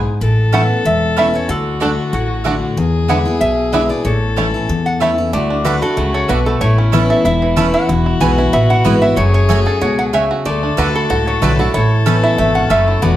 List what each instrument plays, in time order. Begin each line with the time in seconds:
Already playing: steel-string acoustic guitar G#2
0.21 upright bass A1, steel-string acoustic guitar A2, fiddle A4
0.52 steel-string acoustic guitar E3 B3 C#4 E4, five-string banjo A3 C#4 E4, mandolin C#4 A4 E5 B5, resonator guitar played with a steel bar F#5
0.85 upright bass E1, steel-string acoustic guitar E2, resonator guitar played with a steel bar E5
1.16 steel-string acoustic guitar E3 B3 C#4 E4, five-string banjo A3 C#4 E4, mandolin C#4 A4 E5 B5, resonator guitar played with a steel bar E5
1.34 steel-string acoustic guitar C#4 E4, resonator guitar played with a steel bar C#5
1.49 upright bass D2, steel-string acoustic guitar D3, fiddle F#4, resonator guitar played with a steel bar A4
1.80 steel-string acoustic guitar D3 A3 D4 F#4, mandolin A3 F#4 D5 F#5, five-string banjo A3 D4 F#4, resonator guitar played with a steel bar A4
2.13 upright bass A1, steel-string acoustic guitar A2, resonator guitar played with a steel bar F#4
2.44 steel-string acoustic guitar D3 A3 D4 F#4, mandolin A3 F#4 D5 F#5, five-string banjo A3 D4 F#4
2.77 upright bass E2, steel-string acoustic guitar E2, fiddle G#4
3.08 steel-string acoustic guitar D3 G#3 B3 E4, mandolin B3 E4 D5 G#5, five-string banjo B3 D4 E4, resonator guitar played with a steel bar F#5
3.25 steel-string acoustic guitar B3 E4
3.41 upright bass B1, steel-string acoustic guitar B2, resonator guitar played with a steel bar E5
3.72 steel-string acoustic guitar D3 G#3 B3 E4, mandolin B3 E4 D5 G#5, five-string banjo B3 D4 E4, resonator guitar played with a steel bar E5
3.89 steel-string acoustic guitar B3 E4, resonator guitar played with a steel bar D5
4.05 upright bass A1, steel-string acoustic guitar A2, fiddle A4, resonator guitar played with a steel bar C#5
4.36 steel-string acoustic guitar E3 A3 C#4 E4, mandolin A3 E4 C#5 A5, five-string banjo A3 C#4 E4
4.54 steel-string acoustic guitar C#4 E4
4.69 upright bass E2, steel-string acoustic guitar E2
4.86 resonator guitar played with a steel bar F#5
5.00 steel-string acoustic guitar E3 A3 C#4 E4, mandolin A3 E4 C#5 A5, five-string banjo A3 C#4 E4, resonator guitar played with a steel bar E5
5.18 steel-string acoustic guitar C#4 E4
5.33 upright bass D2, steel-string acoustic guitar D3, five-string banjo A3, fiddle F#4, resonator guitar played with a steel bar D5
5.50 five-string banjo D4
5.64 steel-string acoustic guitar D3 A3 D4 F#4, mandolin A3 F#4 D5 F#5, five-string banjo A3, resonator guitar played with a steel bar B4
5.82 steel-string acoustic guitar D4 F#4, five-string banjo F#4, resonator guitar played with a steel bar A4
5.97 upright bass C#2, steel-string acoustic guitar C#3, five-string banjo A3
6.14 five-string banjo A4, resonator guitar played with a steel bar C#5
6.28 upright bass B1, steel-string acoustic guitar B2, mandolin A3 F#4 D5 F#5, five-string banjo F#4, resonator guitar played with a steel bar B4
6.46 five-string banjo A3, resonator guitar played with a steel bar A4
6.61 upright bass A1, steel-string acoustic guitar A2, five-string banjo A3, fiddle E4, resonator guitar played with a steel bar C#5
6.78 five-string banjo C#4
6.92 steel-string acoustic guitar E3 B3 C#4 E4, mandolin C#4 A4 E5 B5, five-string banjo E4
7.10 five-string banjo A4, resonator guitar played with a steel bar E5
7.25 upright bass E1, steel-string acoustic guitar E2, five-string banjo E4, resonator guitar played with a steel bar E5
7.42 five-string banjo E3
7.56 steel-string acoustic guitar E3 B3 C#4 E4, five-string banjo A3, mandolin C#4 A4 E5 B5, resonator guitar played with a steel bar A5
7.74 five-string banjo E4, resonator guitar played with a steel bar F#5
7.89 upright bass E1, steel-string acoustic guitar E2, five-string banjo E4, fiddle F#4
8.06 five-string banjo E4
8.20 upright bass B1, steel-string acoustic guitar E3 G#3 B3 E4, mandolin B3 E4 B4 G#5, five-string banjo B3, resonator guitar played with a steel bar G#5
8.38 steel-string acoustic guitar B3 E4, five-string banjo E4
8.53 upright bass A1, steel-string acoustic guitar B2, five-string banjo B3, resonator guitar played with a steel bar E5
8.70 five-string banjo E4, resonator guitar played with a steel bar F#5
8.85 upright bass G#1, steel-string acoustic guitar E3 G#3 B3 E4, mandolin B3 E4 B4 G#5, five-string banjo B3
9.02 steel-string acoustic guitar B3 E4, five-string banjo E4, resonator guitar played with a steel bar E5
9.16 upright bass F#1, steel-string acoustic guitar F#2, five-string banjo A3, fiddle G#4, resonator guitar played with a steel bar C#5
9.34 resonator guitar played with a steel bar C#5
9.49 steel-string acoustic guitar F#3 A3 C#4 G#4, mandolin A3 F#4 C#5 G#5, five-string banjo F#4
9.66 steel-string acoustic guitar C#4 G#4, five-string banjo A4
9.81 upright bass C#2, steel-string acoustic guitar B2, five-string banjo F#4, resonator guitar played with a steel bar C#5
9.99 five-string banjo F#3, resonator guitar played with a steel bar F#5
10.13 steel-string acoustic guitar C#3, mandolin A3 F#4 C#5 G#5, five-string banjo A3, resonator guitar played with a steel bar E5
10.31 five-string banjo F#4
10.45 upright bass D2, steel-string acoustic guitar D3, five-string banjo A3, fiddle A4, resonator guitar played with a steel bar D5
10.63 five-string banjo D4
10.77 upright bass D2, steel-string acoustic guitar D3 A3 D4 F#4, mandolin A3 F#4 D5 F#5, five-string banjo F#4, resonator guitar played with a steel bar B4
10.95 five-string banjo A4, resonator guitar played with a steel bar A4
11.10 upright bass C#2, steel-string acoustic guitar A2, five-string banjo F#4
11.27 five-string banjo F#3, resonator guitar played with a steel bar C#5
11.42 upright bass B1, steel-string acoustic guitar D3 A3 D4 F#4, mandolin A3 F#4 D5 F#5, five-string banjo A3, resonator guitar played with a steel bar B4
11.59 steel-string acoustic guitar D4 F#4, five-string banjo F#4, resonator guitar played with a steel bar A4
11.74 upright bass A1, steel-string acoustic guitar A2, five-string banjo E4, fiddle A4, resonator guitar played with a steel bar C#5
12.06 steel-string acoustic guitar E3 B3 C#4 E4, five-string banjo A3, mandolin C#4 A4 E5 B5
12.23 five-string banjo E4, resonator guitar played with a steel bar E5
12.38 upright bass G#1, steel-string acoustic guitar B2, five-string banjo A3, resonator guitar played with a steel bar E5
12.55 five-string banjo C#4, resonator guitar played with a steel bar F#5
12.70 upright bass F#1, steel-string acoustic guitar F#2, five-string banjo A3, mandolin C#4 A4 E5 B5, resonator guitar played with a steel bar E5
12.88 five-string banjo E4
13.01 upright bass E1, steel-string acoustic guitar E2, five-string banjo B3, fiddle F#4, resonator guitar played with a steel bar D5